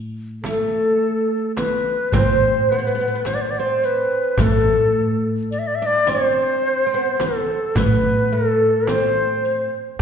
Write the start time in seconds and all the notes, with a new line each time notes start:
Already playing: A2
0.43 A3 A4, riq, darbuka tek, frame drum
1.01 darbuka ka
1.57 B4, riq, darbuka tek, frame drum
2.12 A2 C4 C5, riq, darbuka dum, frame drum
2.70 B3 B4
2.77 B3 C5
2.84 B3 B4
2.95 B3
3.00 B3
3.08 B3
3.15 B3
3.25 C5, riq, darbuka tek, frame drum
3.35 D5
3.41 C5
3.50 D5
3.59 C4 C5
3.83 B4, riq
4.38 A2 A3, riq, darbuka dum, frame drum
4.42 A4
5.51 D5, riq
5.59 E5
5.67 D5
5.75 E5
5.82 D4 D5
6.07 C4 C5, riq, darbuka tek, frame drum
6.64 darbuka ka
6.86 C4
6.94 B3
7.20 A4, riq, frame drum
7.75 A2 B3 B4, riq, frame drum, darbuka dum
8.32 A3 A4
8.87 C4 C5, riq, darbuka tek, frame drum
9.45 riq